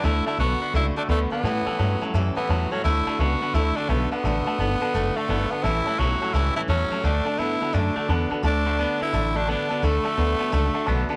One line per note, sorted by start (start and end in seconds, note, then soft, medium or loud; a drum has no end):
0.03 0.25 D2 loud
0.03 0.26 D3 medium
0.03 0.24 D3 medium
0.03 0.24 A3 medium
0.03 0.26 A3 medium
0.03 0.27 D4 medium
0.03 0.27 E4 loud
0.03 0.26 F#4 medium
0.03 0.25 A4 medium
0.03 0.17 D5 medium
0.03 0.17 F#5 medium
0.03 0.18 A5 loud
0.26 0.38 D3 medium
0.26 0.38 A3 medium
0.26 0.38 D4 soft
0.26 0.39 E4 medium
0.26 0.39 F#4 soft
0.26 0.39 A4 soft
0.26 0.34 D5 medium
0.26 0.34 F#5 medium
0.26 0.35 A5 loud
0.38 0.60 B1 medium
0.38 0.59 D3 medium
0.38 0.61 A3 medium
0.38 0.59 B3 loud
0.38 0.61 D4 medium
0.38 0.72 F#4 medium
0.38 0.61 F#4 medium
0.38 0.59 A4 medium
0.38 0.52 D5 medium
0.38 0.53 F#5 medium
0.38 0.53 A5 medium
0.60 0.73 D3 medium
0.60 0.73 B3 medium
0.60 0.75 D4 soft
0.60 0.75 F#4 medium
0.60 0.74 A4 medium
0.60 0.69 D5 medium
0.60 0.69 F#5 medium
0.60 0.69 B5 medium
0.73 0.95 C#2 medium
0.73 0.96 D3 medium
0.73 0.94 D3 medium
0.73 0.94 A3 medium
0.73 0.97 A3 medium
0.73 0.97 D4 medium
0.73 0.85 E4 medium
0.73 0.97 F#4 medium
0.73 0.95 A4 medium
0.73 0.87 D5 medium
0.73 0.87 F#5 medium
0.73 0.88 B5 medium
0.95 1.08 D3 medium
0.95 1.08 A3 medium
0.95 1.03 D4 medium
0.95 1.10 F#4 soft
0.95 1.09 A4 medium
0.95 1.04 D5 medium
0.95 1.04 F#5 medium
0.95 1.05 A5 medium
1.00 1.09 D4 soft
1.07 1.30 D2 medium
1.07 1.29 D3 medium
1.07 1.31 A3 medium
1.07 1.20 A3 medium
1.07 1.29 B3 loud
1.07 1.32 D4 medium
1.07 1.32 F#4 medium
1.07 1.22 D5 loud
1.07 1.22 F#5 medium
1.07 1.23 B5 loud
1.12 1.30 A4 medium
1.30 1.43 D3 medium
1.30 2.04 B3 medium
1.30 1.43 B3 medium
1.30 1.45 F#4 soft
1.30 1.44 A4 medium
1.30 1.39 D5 medium
1.30 1.39 F#5 medium
1.30 1.39 A5 medium
1.34 1.46 D4 soft
1.43 1.65 A2 medium
1.43 1.64 A2 medium
1.43 1.67 A2 medium
1.43 1.64 E3 medium
1.43 1.67 E3 medium
1.43 1.67 G3 medium
1.43 1.68 C#4 medium
1.43 1.67 G4 medium
1.43 1.66 A4 medium
1.43 1.57 C#5 medium
1.43 1.58 E5 medium
1.43 1.58 A5 medium
1.65 1.78 A2 medium
1.65 1.78 E3 medium
1.65 1.80 G4 soft
1.65 1.79 A4 medium
1.65 1.73 C#5 loud
1.65 1.74 E5 medium
1.65 1.74 A5 loud
1.65 muted upright bass stroke medium
1.69 1.78 G3 soft
1.69 1.80 C#4 soft
1.77 2.01 G2 medium
1.77 1.99 A2 medium
1.77 1.99 F#3 medium
1.77 2.01 G3 medium
1.77 2.02 C#4 medium
1.77 1.92 C#5 medium
1.77 1.92 E5 medium
1.77 1.92 A5 loud
1.82 2.01 G4 medium
1.82 2.00 A4 medium
2.00 2.13 A2 medium
2.00 2.13 F#3 medium
2.00 2.14 C#4 medium
2.00 2.14 G4 medium
2.00 2.14 A4 medium
2.00 2.09 C#5 medium
2.00 2.09 E5 medium
2.00 2.10 A5 medium
2.00 muted upright bass stroke medium
2.05 2.14 G3 medium
2.13 2.35 F#2 medium
2.13 2.36 A2 medium
2.13 2.34 A2 medium
2.13 2.36 E3 medium
2.13 2.35 E3 loud
2.13 2.37 G3 medium
2.13 2.37 C#4 loud
2.13 2.37 G4 loud
2.13 2.35 A4 medium
2.13 2.27 C#5 medium
2.13 2.27 E5 medium
2.13 2.28 A5 medium
2.35 2.48 A2 medium
2.35 2.49 E3 medium
2.35 2.73 B3 medium
2.35 2.49 C#4 soft
2.35 2.50 G4 soft
2.35 2.49 A4 medium
2.35 2.44 C#5 medium
2.35 2.44 E5 medium
2.35 2.44 A5 medium
2.35 muted upright bass stroke medium
2.40 2.48 G3 soft
2.48 2.71 E2 medium
2.48 2.69 A2 medium
2.48 2.70 F#3 loud
2.48 2.71 G3 medium
2.48 2.72 C#4 medium
2.48 2.71 G4 medium
2.48 2.62 C#5 loud
2.48 2.63 E5 medium
2.48 2.63 A5 loud
2.53 2.70 A4 medium
2.71 2.83 A2 medium
2.71 2.83 F#3 medium
2.71 2.85 G3 soft
2.71 2.83 C#4 medium
2.71 2.85 C#4 medium
2.71 2.85 G4 soft
2.71 2.84 A4 medium
2.71 2.79 C#5 medium
2.71 2.79 E5 medium
2.71 2.80 A5 medium
2.84 3.06 D2 medium
2.84 3.06 D3 medium
2.84 3.04 D3 medium
2.84 3.07 A3 medium
2.84 3.05 A3 medium
2.84 3.07 D4 medium
2.84 3.21 E4 loud
2.84 3.07 F#4 medium
2.84 3.04 A4 medium
2.84 2.97 D5 loud
2.84 2.98 F#5 medium
2.84 2.98 A5 loud
3.05 3.18 D3 medium
3.05 3.19 A3 medium
3.05 3.19 D4 soft
3.05 3.20 F#4 soft
3.05 3.19 A4 soft
3.05 3.14 D5 medium
3.05 3.14 F#5 medium
3.05 3.15 A5 loud
3.19 3.41 C#2 medium
3.19 3.40 D3 medium
3.19 3.41 A3 medium
3.19 3.40 B3 loud
3.19 3.42 D4 medium
3.19 3.56 F#4 medium
3.19 3.41 F#4 medium
3.19 3.39 A4 medium
3.19 3.33 D5 medium
3.19 3.33 F#5 medium
3.19 3.33 A5 medium
3.40 3.53 D3 medium
3.40 3.53 B3 medium
3.40 3.54 D4 soft
3.40 3.55 F#4 soft
3.40 3.54 A4 medium
3.40 3.49 D5 medium
3.40 3.50 F#5 medium
3.40 3.50 A5 medium
3.54 3.75 D2 medium
3.54 3.76 D3 medium
3.54 3.74 D3 medium
3.54 3.75 A3 medium
3.54 3.77 A3 medium
3.54 3.77 D4 medium
3.54 3.78 E4 medium
3.54 3.77 F#4 medium
3.54 3.75 A4 medium
3.54 3.67 D5 medium
3.54 3.68 F#5 medium
3.54 3.68 A5 medium
3.76 3.88 D3 medium
3.76 3.88 A3 medium
3.76 3.91 D4 loud
3.76 3.89 D4 soft
3.76 3.90 F#4 soft
3.76 3.89 A4 medium
3.76 3.84 D5 medium
3.76 3.84 F#5 medium
3.76 3.85 A5 medium
3.88 4.10 B1 loud
3.88 4.09 D3 medium
3.88 4.11 A3 medium
3.88 4.10 B3 loud
3.88 4.12 D4 medium
3.88 4.12 F#4 medium
3.88 4.02 D5 medium
3.88 4.03 F#5 medium
3.88 4.03 A5 loud
3.93 4.10 A4 medium
4.11 4.23 D3 medium
4.11 5.18 B3 medium
4.11 4.23 B3 medium
4.11 4.25 F#4 medium
4.11 4.24 A4 soft
4.11 4.19 D5 medium
4.11 4.19 F#5 medium
4.11 4.20 A5 medium
4.11 muted upright bass stroke medium
4.15 4.25 D4 soft
4.24 4.45 A1 medium
4.24 4.44 D3 medium
4.24 4.47 D3 medium
4.24 4.44 A3 medium
4.24 4.47 A3 medium
4.24 4.47 D4 medium
4.24 4.47 F#4 medium
4.24 4.45 A4 medium
4.24 4.37 D5 loud
4.24 4.38 F#5 medium
4.24 4.38 A5 loud
4.46 4.58 D3 medium
4.46 4.58 A3 loud
4.46 4.60 F#4 soft
4.46 4.59 A4 medium
4.46 4.54 D5 loud
4.46 4.54 F#5 medium
4.46 4.55 A5 loud
4.58 4.80 G1 medium
4.58 4.79 D3 medium
4.58 4.81 A3 medium
4.58 4.80 B3 loud
4.58 4.82 D4 medium
4.58 4.82 F#4 medium
4.58 4.72 D5 medium
4.58 4.72 F#5 medium
4.58 4.73 A5 medium
4.62 4.80 A4 medium
4.81 4.93 D3 medium
4.81 4.93 B3 medium
4.81 4.94 D4 medium
4.81 4.95 F#4 medium
4.81 4.94 A4 medium
4.81 4.89 D5 medium
4.81 4.89 F#5 medium
4.81 4.89 A5 loud
4.81 muted upright bass stroke medium
4.94 5.15 F#1 medium
4.94 5.16 D3 loud
4.94 5.14 D3 medium
4.94 5.17 A3 loud
4.94 5.15 A3 loud
4.94 5.17 D4 medium
4.94 5.16 F#4 loud
4.94 5.15 A4 loud
4.94 5.07 D5 medium
4.94 5.08 F#5 medium
4.94 5.08 A5 loud
5.16 5.28 D3 medium
5.16 5.53 A3 medium
5.16 5.28 A3 medium
5.16 5.29 D4 soft
5.16 5.30 F#4 soft
5.16 5.29 A4 medium
5.16 5.24 D5 medium
5.16 5.25 F#5 medium
5.16 5.25 A5 medium
5.16 muted upright bass stroke medium
5.29 5.50 G1 loud
5.29 5.49 D3 medium
5.29 5.51 A3 medium
5.29 5.49 B3 loud
5.29 5.52 D4 medium
5.29 5.52 F#4 medium
5.29 5.50 A4 medium
5.29 5.42 D5 medium
5.29 5.42 F#5 medium
5.29 5.43 A5 loud
5.51 5.63 D3 medium
5.51 5.65 B3 medium
5.51 5.63 B3 medium
5.51 5.66 D4 soft
5.51 5.65 F#4 soft
5.51 5.64 A4 medium
5.51 5.59 D5 medium
5.51 5.59 F#5 medium
5.51 5.60 A5 medium
5.63 5.85 A1 medium
5.63 5.86 A2 medium
5.63 5.84 A2 medium
5.63 5.87 E3 medium
5.63 5.85 E3 loud
5.63 5.87 G3 medium
5.63 5.87 C#4 medium
5.63 6.00 E4 loud
5.63 5.86 G4 medium
5.63 5.84 A4 medium
5.63 5.77 C#5 medium
5.63 5.77 E5 medium
5.63 5.77 A5 loud
5.85 5.98 A2 medium
5.85 5.98 E3 medium
5.85 5.99 C#4 medium
5.85 6.00 G4 medium
5.85 5.99 A4 medium
5.85 5.93 C#5 loud
5.85 5.94 E5 medium
5.85 5.94 A5 loud
5.89 5.98 G3 soft
5.98 6.20 B1 loud
5.98 6.19 A2 medium
5.98 6.19 F#3 medium
5.98 6.21 G3 medium
5.98 6.22 C#4 medium
5.98 6.35 F#4 medium
5.98 6.21 G4 medium
5.98 6.12 C#5 medium
5.98 6.12 E5 medium
5.98 6.13 A5 medium
6.02 6.20 A4 medium
6.20 6.33 A2 medium
6.20 6.33 F#3 medium
6.20 6.34 C#4 soft
6.20 6.35 G4 medium
6.20 6.34 A4 medium
6.20 6.28 C#5 medium
6.20 6.29 E5 medium
6.20 6.29 A5 medium
6.20 muted upright bass stroke medium
6.24 6.34 G3 medium
6.33 6.55 C#2 medium
6.33 6.56 A2 medium
6.33 6.54 A2 medium
6.33 6.56 E3 medium
6.33 6.54 E3 medium
6.33 6.57 G3 medium
6.33 6.57 C#4 medium
6.33 6.56 E4 medium
6.33 6.56 G4 medium
6.33 6.54 A4 medium
6.33 6.47 C#5 medium
6.33 6.47 E5 medium
6.33 6.48 A5 medium
6.56 6.68 A2 medium
6.56 6.68 E3 medium
6.56 6.67 G3 soft
6.56 6.68 C#4 soft
6.56 6.62 E4 medium
6.56 6.70 G4 soft
6.56 6.69 A4 soft
6.56 6.64 C#5 medium
6.56 6.64 E5 medium
6.56 6.65 A5 medium
6.68 6.90 E2 medium
6.68 6.89 A2 medium
6.68 6.89 F#3 loud
6.68 6.90 G3 medium
6.68 7.06 C#4 medium
6.68 6.90 G4 medium
6.68 6.89 A4 medium
6.68 6.82 C#5 medium
6.68 6.82 E5 medium
6.68 6.83 A5 loud
6.90 7.03 A2 medium
6.90 7.03 F#3 medium
6.90 7.04 G3 soft
6.90 7.04 C#4 soft
6.90 7.04 G4 medium
6.90 7.04 A4 medium
6.90 6.99 C#5 medium
6.90 6.99 E5 medium
6.90 6.99 A5 medium
6.90 muted upright bass stroke medium
7.03 7.25 D2 medium
7.03 7.26 D3 medium
7.03 7.24 D3 medium
7.03 7.24 A3 medium
7.03 7.26 A3 medium
7.03 7.40 D4 medium
7.03 7.26 D4 medium
7.03 7.26 F#4 medium
7.03 7.24 A4 medium
7.03 7.17 D5 medium
7.03 7.17 F#5 medium
7.03 7.18 A5 medium
7.24 7.37 D3 medium
7.24 7.38 A3 medium
7.24 7.40 F#4 soft
7.24 7.39 A4 soft
7.24 7.33 D5 loud
7.24 7.33 F#5 medium
7.24 7.34 A5 loud
7.29 7.38 D4 soft
7.38 7.59 G2 loud
7.38 7.59 D3 medium
7.38 7.61 A3 medium
7.38 7.59 B3 medium
7.38 7.61 D4 medium
7.38 7.76 E4 medium
7.38 7.60 F#4 medium
7.38 7.59 A4 medium
7.38 7.52 D5 medium
7.38 7.52 F#5 medium
7.38 7.53 A5 medium
7.60 7.73 D3 medium
7.60 7.73 B3 medium
7.60 7.73 D4 soft
7.60 7.74 F#4 medium
7.60 7.73 A4 medium
7.60 7.69 D5 medium
7.60 7.69 F#5 medium
7.60 7.70 A5 medium
7.60 muted upright bass stroke soft
7.73 7.95 F#2 medium
7.73 7.95 D3 medium
7.73 7.94 D3 medium
7.73 7.96 A3 medium
7.73 7.94 A3 medium
7.73 8.31 D4 medium
7.73 7.96 D4 medium
7.73 7.96 F#4 medium
7.73 7.94 A4 medium
7.73 7.87 D5 medium
7.73 7.87 F#5 medium
7.73 7.88 A5 medium
7.95 8.07 D3 medium
7.95 8.08 A3 medium
7.95 8.09 F#4 soft
7.95 8.08 A4 soft
7.95 8.03 D5 medium
7.95 8.04 F#5 medium
7.95 8.04 A5 medium
7.95 muted upright bass stroke medium
8.08 8.30 E2 loud
8.08 8.29 D3 medium
8.08 8.31 A3 medium
8.08 8.29 B3 loud
8.08 8.31 D4 medium
8.08 8.31 F#4 medium
8.08 8.29 A4 medium
8.08 8.22 D5 loud
8.08 8.22 F#5 medium
8.08 8.23 A5 loud
8.30 8.42 D3 medium
8.30 8.43 B3 medium
8.30 8.43 D4 soft
8.30 8.43 F#4 medium
8.30 8.43 A4 medium
8.30 8.38 D5 medium
8.30 8.39 F#5 medium
8.30 8.39 A5 medium
8.30 muted upright bass stroke medium
8.42 8.83 D2 loud
8.42 8.65 D3 medium
8.42 8.63 D3 medium
8.42 8.66 A3 medium
8.42 8.64 A3 medium
8.42 8.66 D4 medium
8.42 8.98 D4 loud
8.42 8.66 F#4 medium
8.42 8.64 A4 medium
8.42 8.56 D5 medium
8.42 8.57 F#5 medium
8.42 8.57 A5 loud
8.65 8.77 D3 medium
8.65 8.78 A3 medium
8.65 8.79 F#4 soft
8.65 8.78 A4 medium
8.65 8.73 D5 loud
8.65 8.73 F#5 medium
8.65 8.74 B5 loud
8.69 8.78 D4 soft
8.77 8.99 D3 medium
8.77 9.01 A3 medium
8.77 8.99 B3 medium
8.77 9.01 D4 medium
8.77 9.01 F#4 medium
8.77 8.91 D5 medium
8.77 8.92 A5 medium
8.82 8.99 A4 medium
9.00 9.12 D3 medium
9.00 9.13 B3 medium
9.00 9.13 D4 soft
9.00 9.38 E4 medium
9.00 9.14 F#4 medium
9.00 9.13 A4 medium
9.00 9.08 D5 medium
9.00 9.08 F#5 medium
9.00 9.09 A5 medium
9.00 muted upright bass stroke medium
9.13 9.53 A1 medium
9.13 9.35 D3 medium
9.13 9.33 D3 medium
9.13 9.36 A3 medium
9.13 9.33 A3 medium
9.13 9.36 D4 medium
9.13 9.35 F#4 medium
9.13 9.33 A4 medium
9.13 9.26 D5 medium
9.13 9.27 F#5 medium
9.13 9.27 A5 medium
9.34 9.47 D3 medium
9.34 9.47 A3 medium
9.34 9.49 D4 medium
9.34 9.49 F#4 soft
9.34 9.48 A4 medium
9.34 9.43 D5 medium
9.34 9.43 F#5 medium
9.34 9.43 A5 medium
9.46 9.68 D3 medium
9.46 9.70 A3 medium
9.46 9.68 B3 loud
9.46 9.70 D4 medium
9.46 9.70 F#4 medium
9.46 9.61 D5 loud
9.46 9.61 F#5 medium
9.46 9.61 A5 loud
9.51 9.86 D4 medium
9.51 9.68 A4 medium
9.68 9.82 D3 medium
9.68 9.82 B3 medium
9.68 9.83 F#4 medium
9.68 9.83 A4 medium
9.68 9.77 D5 medium
9.68 9.77 F#5 medium
9.68 9.78 A5 medium
9.68 muted upright bass stroke medium
9.73 9.82 D4 soft
9.81 9.98 D2 medium
9.81 10.05 D3 medium
9.81 10.03 D3 medium
9.81 10.05 A3 medium
9.81 10.03 A3 medium
9.81 11.11 A3 loud
9.81 10.05 D4 medium
9.81 10.05 F#4 medium
9.81 10.03 A4 medium
9.81 9.95 D5 medium
9.81 9.96 F#5 medium
9.81 9.96 B5 loud
10.03 10.17 D3 medium
10.03 10.17 A3 medium
10.03 10.18 F#4 medium
10.03 10.18 A4 medium
10.03 10.12 D5 loud
10.03 10.12 F#5 medium
10.03 10.13 A5 loud
10.08 10.16 D4 soft
10.16 10.37 D2 medium
10.16 10.38 D3 medium
10.16 10.39 A3 medium
10.16 10.38 B3 medium
10.16 10.40 D4 medium
10.16 10.40 F#4 medium
10.16 10.38 A4 medium
10.16 10.31 D5 medium
10.16 10.31 F#5 medium
10.16 10.32 B5 medium
10.38 10.51 D3 medium
10.38 10.52 B3 medium
10.38 10.52 D4 medium
10.38 10.53 F#4 medium
10.38 10.52 A4 medium
10.38 10.47 D5 medium
10.38 10.47 F#5 medium
10.38 10.48 A5 medium
10.38 muted upright bass stroke medium
10.51 10.72 C#2 medium
10.51 10.75 D3 loud
10.51 10.73 D3 medium
10.51 10.75 A3 medium
10.51 10.73 A3 loud
10.51 10.75 D4 loud
10.51 10.75 F#4 loud
10.51 10.73 A4 loud
10.51 10.65 D5 medium
10.51 10.66 F#5 medium
10.51 10.66 A5 loud
10.73 10.86 D3 medium
10.73 10.87 A3 medium
10.73 10.87 D4 soft
10.73 10.88 F#4 soft
10.73 10.87 A4 medium
10.73 10.82 D5 medium
10.73 10.80 E5 medium
10.73 10.79 F#5 medium
10.73 10.82 A5 loud
10.80 10.85 F#5 medium
10.86 11.06 B1 medium
10.86 11.08 D3 medium
10.86 11.09 A3 medium
10.86 11.08 B3 loud
10.86 11.10 D4 medium
10.86 11.09 F#4 medium
10.86 11.08 A4 medium
10.86 11.00 D5 loud
10.86 11.00 F#5 loud
10.86 11.01 A5 loud
11.09 11.16 D3 medium
11.09 11.16 B3 medium
11.09 11.16 D4 medium
11.09 11.16 F#4 soft
11.09 11.16 A4 medium
11.09 11.16 D5 loud
11.09 11.16 F#5 medium
11.09 11.16 A5 loud
11.09 muted upright bass stroke medium